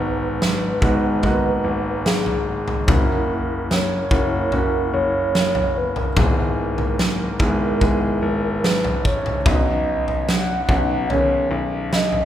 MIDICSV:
0, 0, Header, 1, 5, 480
1, 0, Start_track
1, 0, Key_signature, 5, "minor"
1, 0, Tempo, 821918
1, 1683, Time_signature, 4, 2, 24, 8
1, 7154, End_track
2, 0, Start_track
2, 0, Title_t, "Soft synth lead"
2, 0, Program_c, 0, 80
2, 0, Note_on_c, 0, 71, 101
2, 1206, Note_on_c, 0, 68, 96
2, 1215, Note_off_c, 0, 71, 0
2, 1444, Note_off_c, 0, 68, 0
2, 1453, Note_on_c, 0, 68, 94
2, 1696, Note_on_c, 0, 70, 111
2, 1705, Note_off_c, 0, 68, 0
2, 2180, Note_on_c, 0, 73, 106
2, 2189, Note_off_c, 0, 70, 0
2, 2652, Note_on_c, 0, 70, 98
2, 2661, Note_off_c, 0, 73, 0
2, 2881, Note_off_c, 0, 70, 0
2, 2884, Note_on_c, 0, 73, 103
2, 3373, Note_on_c, 0, 71, 95
2, 3382, Note_off_c, 0, 73, 0
2, 3483, Note_off_c, 0, 71, 0
2, 3487, Note_on_c, 0, 70, 99
2, 5042, Note_on_c, 0, 71, 98
2, 5050, Note_off_c, 0, 70, 0
2, 5282, Note_off_c, 0, 71, 0
2, 5292, Note_on_c, 0, 73, 95
2, 5511, Note_off_c, 0, 73, 0
2, 5529, Note_on_c, 0, 75, 107
2, 5983, Note_off_c, 0, 75, 0
2, 6006, Note_on_c, 0, 78, 109
2, 6461, Note_off_c, 0, 78, 0
2, 6481, Note_on_c, 0, 73, 104
2, 6705, Note_off_c, 0, 73, 0
2, 6975, Note_on_c, 0, 75, 92
2, 7154, Note_off_c, 0, 75, 0
2, 7154, End_track
3, 0, Start_track
3, 0, Title_t, "Grand piano"
3, 0, Program_c, 1, 0
3, 0, Control_c, 1, 64, 127
3, 0, Note_on_c, 1, 44, 61
3, 0, Note_on_c, 1, 56, 73
3, 0, Note_on_c, 1, 59, 65
3, 0, Note_on_c, 1, 63, 61
3, 0, Note_on_c, 1, 66, 76
3, 444, Note_off_c, 1, 56, 0
3, 444, Note_off_c, 1, 63, 0
3, 445, Note_off_c, 1, 59, 0
3, 445, Note_off_c, 1, 66, 0
3, 457, Note_off_c, 1, 44, 0
3, 474, Note_on_c, 1, 56, 83
3, 476, Note_on_c, 1, 63, 75
3, 476, Note_on_c, 1, 66, 83
3, 477, Note_on_c, 1, 59, 70
3, 706, Note_off_c, 1, 56, 0
3, 708, Note_off_c, 1, 59, 0
3, 708, Note_off_c, 1, 63, 0
3, 708, Note_off_c, 1, 66, 0
3, 715, Note_on_c, 1, 56, 79
3, 717, Note_on_c, 1, 63, 77
3, 718, Note_on_c, 1, 58, 65
3, 720, Note_on_c, 1, 66, 92
3, 757, Note_on_c, 1, 59, 71
3, 758, Note_off_c, 1, 58, 0
3, 1631, Note_off_c, 1, 56, 0
3, 1632, Note_off_c, 1, 63, 0
3, 1633, Note_off_c, 1, 66, 0
3, 1652, Note_off_c, 1, 59, 0
3, 1677, Note_on_c, 1, 61, 68
3, 1679, Note_on_c, 1, 58, 68
3, 1679, Note_on_c, 1, 64, 70
3, 1681, Note_on_c, 1, 66, 80
3, 1689, Control_c, 1, 64, 0
3, 1795, Control_c, 1, 64, 127
3, 2364, Note_off_c, 1, 61, 0
3, 2365, Note_off_c, 1, 58, 0
3, 2365, Note_off_c, 1, 64, 0
3, 2366, Note_off_c, 1, 66, 0
3, 2401, Note_on_c, 1, 64, 65
3, 2402, Note_on_c, 1, 58, 64
3, 2403, Note_on_c, 1, 61, 59
3, 2404, Note_on_c, 1, 66, 73
3, 2630, Note_off_c, 1, 58, 0
3, 2630, Note_off_c, 1, 64, 0
3, 2631, Note_off_c, 1, 61, 0
3, 2632, Note_off_c, 1, 66, 0
3, 2640, Note_on_c, 1, 58, 63
3, 2642, Note_on_c, 1, 64, 63
3, 2644, Note_on_c, 1, 61, 65
3, 2644, Note_on_c, 1, 66, 84
3, 3554, Note_off_c, 1, 58, 0
3, 3554, Note_off_c, 1, 64, 0
3, 3555, Note_off_c, 1, 66, 0
3, 3556, Note_off_c, 1, 61, 0
3, 3608, Note_on_c, 1, 56, 74
3, 3610, Note_on_c, 1, 59, 68
3, 3610, Note_on_c, 1, 68, 80
3, 3611, Control_c, 1, 64, 0
3, 3611, Note_on_c, 1, 44, 65
3, 3612, Note_on_c, 1, 64, 63
3, 3712, Control_c, 1, 64, 127
3, 4289, Note_off_c, 1, 56, 0
3, 4290, Note_off_c, 1, 59, 0
3, 4291, Note_off_c, 1, 64, 0
3, 4291, Note_off_c, 1, 68, 0
3, 4303, Note_off_c, 1, 44, 0
3, 4323, Note_on_c, 1, 56, 78
3, 4323, Note_on_c, 1, 64, 67
3, 4324, Note_on_c, 1, 59, 66
3, 4328, Note_on_c, 1, 68, 79
3, 4547, Note_off_c, 1, 56, 0
3, 4551, Note_off_c, 1, 59, 0
3, 4551, Note_off_c, 1, 64, 0
3, 4553, Note_off_c, 1, 68, 0
3, 4556, Note_on_c, 1, 56, 82
3, 4560, Note_on_c, 1, 64, 69
3, 4561, Note_on_c, 1, 59, 68
3, 4561, Note_on_c, 1, 68, 91
3, 5471, Note_off_c, 1, 56, 0
3, 5473, Note_off_c, 1, 64, 0
3, 5474, Note_off_c, 1, 59, 0
3, 5474, Note_off_c, 1, 68, 0
3, 5521, Note_on_c, 1, 59, 66
3, 5522, Note_on_c, 1, 47, 56
3, 5523, Note_on_c, 1, 63, 64
3, 5526, Note_on_c, 1, 61, 60
3, 5527, Note_on_c, 1, 66, 74
3, 5530, Control_c, 1, 64, 0
3, 5644, Control_c, 1, 64, 127
3, 6206, Note_off_c, 1, 59, 0
3, 6207, Note_off_c, 1, 63, 0
3, 6208, Note_off_c, 1, 61, 0
3, 6209, Note_off_c, 1, 66, 0
3, 6219, Note_off_c, 1, 47, 0
3, 6245, Note_on_c, 1, 59, 65
3, 6247, Note_on_c, 1, 61, 57
3, 6249, Note_on_c, 1, 63, 55
3, 6251, Note_on_c, 1, 66, 69
3, 6472, Note_off_c, 1, 59, 0
3, 6473, Note_off_c, 1, 61, 0
3, 6474, Note_off_c, 1, 63, 0
3, 6475, Note_off_c, 1, 66, 0
3, 6489, Note_on_c, 1, 59, 64
3, 6491, Note_on_c, 1, 68, 72
3, 6492, Note_on_c, 1, 51, 67
3, 6492, Note_on_c, 1, 61, 67
3, 7154, Note_off_c, 1, 51, 0
3, 7154, Note_off_c, 1, 59, 0
3, 7154, Note_off_c, 1, 61, 0
3, 7154, Note_off_c, 1, 68, 0
3, 7154, End_track
4, 0, Start_track
4, 0, Title_t, "Grand piano"
4, 0, Program_c, 2, 0
4, 0, Note_on_c, 2, 32, 92
4, 458, Note_off_c, 2, 32, 0
4, 480, Note_on_c, 2, 32, 90
4, 938, Note_off_c, 2, 32, 0
4, 958, Note_on_c, 2, 32, 91
4, 1681, Note_off_c, 2, 32, 0
4, 1682, Note_on_c, 2, 30, 89
4, 2379, Note_off_c, 2, 30, 0
4, 2401, Note_on_c, 2, 30, 91
4, 2858, Note_off_c, 2, 30, 0
4, 2883, Note_on_c, 2, 30, 85
4, 3580, Note_off_c, 2, 30, 0
4, 3601, Note_on_c, 2, 32, 80
4, 4299, Note_off_c, 2, 32, 0
4, 4320, Note_on_c, 2, 32, 94
4, 4778, Note_off_c, 2, 32, 0
4, 4801, Note_on_c, 2, 32, 90
4, 5522, Note_off_c, 2, 32, 0
4, 5526, Note_on_c, 2, 35, 87
4, 6221, Note_off_c, 2, 35, 0
4, 6241, Note_on_c, 2, 35, 98
4, 6699, Note_off_c, 2, 35, 0
4, 6721, Note_on_c, 2, 35, 88
4, 7154, Note_off_c, 2, 35, 0
4, 7154, End_track
5, 0, Start_track
5, 0, Title_t, "Drums"
5, 245, Note_on_c, 9, 38, 103
5, 303, Note_off_c, 9, 38, 0
5, 479, Note_on_c, 9, 36, 97
5, 479, Note_on_c, 9, 43, 62
5, 538, Note_off_c, 9, 36, 0
5, 538, Note_off_c, 9, 43, 0
5, 718, Note_on_c, 9, 43, 65
5, 720, Note_on_c, 9, 36, 80
5, 776, Note_off_c, 9, 43, 0
5, 779, Note_off_c, 9, 36, 0
5, 1203, Note_on_c, 9, 38, 109
5, 1261, Note_off_c, 9, 38, 0
5, 1321, Note_on_c, 9, 43, 58
5, 1379, Note_off_c, 9, 43, 0
5, 1563, Note_on_c, 9, 43, 69
5, 1621, Note_off_c, 9, 43, 0
5, 1682, Note_on_c, 9, 36, 112
5, 1684, Note_on_c, 9, 43, 114
5, 1740, Note_off_c, 9, 36, 0
5, 1742, Note_off_c, 9, 43, 0
5, 2167, Note_on_c, 9, 38, 104
5, 2225, Note_off_c, 9, 38, 0
5, 2401, Note_on_c, 9, 36, 99
5, 2402, Note_on_c, 9, 43, 63
5, 2459, Note_off_c, 9, 36, 0
5, 2460, Note_off_c, 9, 43, 0
5, 2640, Note_on_c, 9, 43, 68
5, 2698, Note_off_c, 9, 43, 0
5, 3125, Note_on_c, 9, 38, 108
5, 3184, Note_off_c, 9, 38, 0
5, 3241, Note_on_c, 9, 43, 66
5, 3299, Note_off_c, 9, 43, 0
5, 3481, Note_on_c, 9, 43, 67
5, 3539, Note_off_c, 9, 43, 0
5, 3601, Note_on_c, 9, 43, 120
5, 3602, Note_on_c, 9, 36, 107
5, 3659, Note_off_c, 9, 43, 0
5, 3660, Note_off_c, 9, 36, 0
5, 3960, Note_on_c, 9, 43, 62
5, 4018, Note_off_c, 9, 43, 0
5, 4084, Note_on_c, 9, 38, 107
5, 4142, Note_off_c, 9, 38, 0
5, 4319, Note_on_c, 9, 43, 63
5, 4321, Note_on_c, 9, 36, 100
5, 4377, Note_off_c, 9, 43, 0
5, 4379, Note_off_c, 9, 36, 0
5, 4563, Note_on_c, 9, 36, 91
5, 4564, Note_on_c, 9, 43, 63
5, 4622, Note_off_c, 9, 36, 0
5, 4623, Note_off_c, 9, 43, 0
5, 5048, Note_on_c, 9, 38, 104
5, 5106, Note_off_c, 9, 38, 0
5, 5165, Note_on_c, 9, 43, 64
5, 5224, Note_off_c, 9, 43, 0
5, 5285, Note_on_c, 9, 36, 94
5, 5344, Note_off_c, 9, 36, 0
5, 5407, Note_on_c, 9, 43, 70
5, 5466, Note_off_c, 9, 43, 0
5, 5524, Note_on_c, 9, 36, 112
5, 5524, Note_on_c, 9, 43, 114
5, 5582, Note_off_c, 9, 36, 0
5, 5583, Note_off_c, 9, 43, 0
5, 5886, Note_on_c, 9, 43, 58
5, 5944, Note_off_c, 9, 43, 0
5, 6007, Note_on_c, 9, 38, 112
5, 6065, Note_off_c, 9, 38, 0
5, 6241, Note_on_c, 9, 36, 94
5, 6244, Note_on_c, 9, 43, 60
5, 6300, Note_off_c, 9, 36, 0
5, 6302, Note_off_c, 9, 43, 0
5, 6482, Note_on_c, 9, 43, 69
5, 6541, Note_off_c, 9, 43, 0
5, 6965, Note_on_c, 9, 38, 106
5, 7023, Note_off_c, 9, 38, 0
5, 7080, Note_on_c, 9, 43, 62
5, 7138, Note_off_c, 9, 43, 0
5, 7154, End_track
0, 0, End_of_file